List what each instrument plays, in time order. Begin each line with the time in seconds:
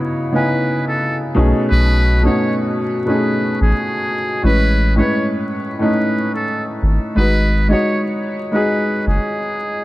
Already playing: felt piano C#3 B3 D#4 E4 F#4
0.32 felt piano C#3 B3 D#4 E4 G#5, muted trumpet B4
0.88 muted trumpet A4
1.35 sub bass B1, felt piano B2 A3 C#4 D#4 G#4
1.71 sub bass B1, muted trumpet B4
2.23 felt piano B2 A3 C#4 D#4 F#4, muted trumpet C#5
3.05 felt piano B2 A3 C#4 D#4, muted trumpet B4
3.10 felt piano G#4
3.61 sub bass A1, muted trumpet G#4
4.42 sub bass A1, felt piano A2 G#3 C#4 B4, muted trumpet B4
4.96 felt piano A2 G#3 C#4 B4, muted trumpet C#5
5.79 felt piano A2 A3 C#4 D#4, muted trumpet B4
6.35 muted trumpet A4
6.83 sub bass G#1
7.15 sub bass G#1, felt piano G#3 D#4 F#4, muted trumpet B4
7.19 felt piano B4
7.68 felt piano G#3 D#4 F#4, muted trumpet C#5
7.73 felt piano C#5
8.52 felt piano G#3 D#4 F#4 G#4, muted trumpet B4
9.07 sub bass F#1, muted trumpet G#4